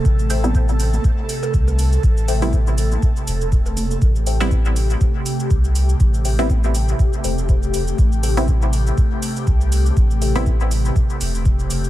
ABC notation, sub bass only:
X:1
M:4/4
L:1/8
Q:"Swing 16ths" 1/4=121
K:Am
V:1 name="Sub bass" clef=bass
A,,,4 z2 C,,2 | A,,,4 z E,,,3 | A,,,4 z2 C,,2 | A,,,4 z E,,,3 |
A,,,4 z2 C,,2 | A,,,4 z E,,,3 |]